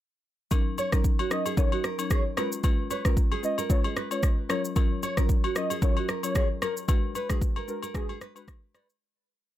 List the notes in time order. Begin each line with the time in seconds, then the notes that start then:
0.51 F#3 C#4 D#4 A#4, kick, high agogo, shaker
0.78 C#5, high agogo, shaker
0.92 F#3 C#4 D#4 A#4, kick, cross-stick, shaker
1.04 kick, shaker
1.19 F#4, high agogo
1.31 F#3 C#4 D#4 A#4 D#5, cross-stick, shaker
1.46 G#4, high agogo, shaker
1.57 F#3 C#4 D#4 A#4 C#5, kick, shaker
1.72 F#4, high agogo
1.84 A#4, cross-stick, shaker
1.98 F#3 C#4 D#4 A#4 C#5, high agogo, shaker
2.10 G#4 C#5, kick, cross-stick, shaker
2.37 G#3 C#4 F4 A#4 B4, cross-stick, high agogo, shaker
2.52 shaker
2.63 G#3 C#4 F4 B4, kick, high agogo, shaker
2.91 B4 C#5, high agogo, shaker
3.05 G#3 C#4 F4 A#4 B4, kick, cross-stick, shaker
3.17 kick, shaker
3.32 G#4, high agogo
3.43 G#3 C#4 F4 B4 D#5, shaker
3.58 A#4, high agogo, shaker
3.70 G#3 C#4 F4 B4 C#5, kick, shaker
3.84 G#4, high agogo
3.97 B4, cross-stick, shaker
4.11 G#3 C#4 F4 B4 C#5, high agogo, shaker
4.23 kick, cross-stick, shaker
4.49 F#3 C#4 F4 A#4 C#5, cross-stick, high agogo, shaker
4.65 shaker
4.76 F#3 C#4 F4 A#4, kick, high agogo, shaker
5.03 C#5, high agogo, shaker
5.17 F#3 C#4 F4 A#4, kick, cross-stick, shaker
5.29 kick, shaker
5.44 F#4, high agogo
5.55 F#3 C#4 F4 A#4 D#5, cross-stick, shaker
5.70 G#4, high agogo, shaker
5.82 F#3 C#4 F4 A#4 C#5, kick, shaker
5.97 F#4, high agogo
6.09 A#4, cross-stick, shaker
6.23 F#3 C#4 F4 A#4 C#5, high agogo, shaker
6.35 G#4 C#5, kick, cross-stick, shaker
6.62 A#4, cross-stick, high agogo, shaker
6.77 shaker
6.88 G#3 D4 F#4 B4, kick, high agogo, shaker
7.15 B4, high agogo, shaker
7.29 G#3 D4 F#4 G#4 B4, kick, cross-stick, shaker
7.42 kick, shaker
7.56 A#4, high agogo
7.68 G#3 D4 F#4 A#4 B4, shaker
7.83 A#4, high agogo, shaker
7.94 G#3 D4 F#4 G#4 B4, kick, cross-stick, shaker
8.09 G#4, high agogo
8.21 B4, cross-stick, shaker
8.36 G#3 D4 F#4 B4, high agogo, shaker
8.48 kick, cross-stick, shaker
8.75 B4 D5, cross-stick, high agogo, shaker
8.90 shaker